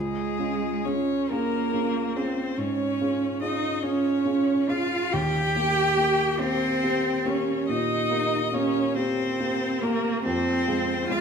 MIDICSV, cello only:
0, 0, Header, 1, 2, 480
1, 0, Start_track
1, 0, Tempo, 898204
1, 932, Tempo, 841515
1, 2372, Tempo, 854701
1, 2858, Time_signature, 12, 3, 24, 8
1, 6269, End_track
2, 0, Start_track
2, 0, Title_t, "Cello"
2, 0, Program_c, 0, 42
2, 0, Note_on_c, 0, 56, 73
2, 457, Note_on_c, 0, 61, 72
2, 465, Note_off_c, 0, 56, 0
2, 705, Note_on_c, 0, 58, 75
2, 713, Note_off_c, 0, 61, 0
2, 1171, Note_on_c, 0, 60, 59
2, 1180, Note_off_c, 0, 58, 0
2, 1406, Note_on_c, 0, 61, 72
2, 1415, Note_off_c, 0, 60, 0
2, 1876, Note_on_c, 0, 63, 75
2, 1885, Note_off_c, 0, 61, 0
2, 2120, Note_off_c, 0, 63, 0
2, 2126, Note_on_c, 0, 61, 80
2, 2610, Note_on_c, 0, 65, 78
2, 2619, Note_off_c, 0, 61, 0
2, 2855, Note_on_c, 0, 67, 92
2, 2863, Note_off_c, 0, 65, 0
2, 3566, Note_on_c, 0, 60, 91
2, 3574, Note_off_c, 0, 67, 0
2, 4058, Note_on_c, 0, 61, 72
2, 4066, Note_off_c, 0, 60, 0
2, 4297, Note_on_c, 0, 63, 84
2, 4305, Note_off_c, 0, 61, 0
2, 4758, Note_off_c, 0, 63, 0
2, 4762, Note_on_c, 0, 61, 85
2, 5006, Note_on_c, 0, 60, 82
2, 5014, Note_off_c, 0, 61, 0
2, 5489, Note_on_c, 0, 58, 84
2, 5498, Note_off_c, 0, 60, 0
2, 5719, Note_off_c, 0, 58, 0
2, 5723, Note_on_c, 0, 60, 89
2, 6190, Note_off_c, 0, 60, 0
2, 6193, Note_on_c, 0, 65, 89
2, 6269, Note_off_c, 0, 65, 0
2, 6269, End_track
0, 0, End_of_file